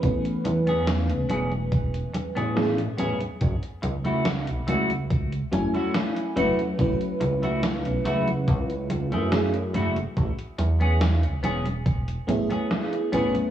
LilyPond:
<<
  \new Staff \with { instrumentName = "Clean electric guitar" } { \time 4/4 \key a \major \tempo 4 = 71 r8. <b cis' gis'>16 r8 <b cis' gis'>16 r4 <b cis' gis'>16 r8 <b cis' gis'>16 r16 | r8. <a e' fis'>16 r8 <a e' fis'>16 r4 <a e' fis'>16 r8 <a e' fis'>16 r16 | r8. <a e' fis'>16 r8 <a e' fis'>16 r4 <a e' gis'>16 r8 <a e' fis'>16 r16 | r8. <b cis' gis'>16 r8 <b cis' gis'>16 r4 <b cis' gis'>16 r8 <b cis' gis'>16 r16 | }
  \new Staff \with { instrumentName = "FM electric piano" } { \time 4/4 \key a \major <e a b cis' b'>2. <a b cis' e' gis'>8 r8 | r2 r8 <fis a cis' e' gis''>4 <fis a cis' e' b'>8 | <fis a cis' e' b'>2. <fis a cis' e' gis'>8 r8 | r2 r8 <a b cis' e' gis'>4 <a b cis' e' b'>8 | }
  \new Staff \with { instrumentName = "Analog synth bass" } { \clef bass \time 4/4 \key a \major a,,16 r16 e,8. cis,16 e,,8. r8 a,,8 r16 a,,16 r16 | fis,,16 r16 cis,8. b,,16 cis,8. r16 fis,,16 r8. fis,,16 r16 | fis,,16 r16 cis,8. b,,16 cis,8 cis,8. fis,8. fis,,16 r16 | a,,16 r16 e,8. cis,16 e,,8. r16 a,,16 r8. a,,16 r16 | }
  \new DrumStaff \with { instrumentName = "Drums" } \drummode { \time 4/4 <cgho hh bd>16 hh16 <cgho hh>16 <cgho hh>16 <cgho hh sn>16 hh16 <cgho hh>16 <cgho hh>16 <cgho hh bd>16 hh16 <cgho hh>16 <cgho hh>16 <cgho hh sn>16 hh16 <cgho hh>16 <cgho hh>16 | <cgho hh bd>16 hh16 <cgho hh>16 <cgho hh>16 <cgho hh sn>16 hh16 <cgho hh>16 <cgho hh>16 <cgho hh bd>16 hh16 <cgho hh>16 <cgho hh>16 <cgho hh sn>16 hh16 <cgho hh>16 <cgho hh>16 | <cgho hh bd>16 hh16 <cgho hh>16 <cgho hh>16 <cgho hh sn>16 hh16 <cgho hh>16 <cgho hh>16 <cgho hh bd>16 hh16 <cgho hh>16 <cgho hh>16 <cgho hh sn>16 hh16 <cgho hh>16 <cgho hh>16 | <cgho hh bd>16 hh16 <cgho hh>16 <cgho hh>16 <cgho hh sn>16 hh16 <cgho hh>16 <cgho hh>16 <cgho hh bd>16 hh16 <cgho hh>16 <cgho hh>16 <cgho hh sn>16 hh16 <cgho hh>16 <cgho hh>16 | }
>>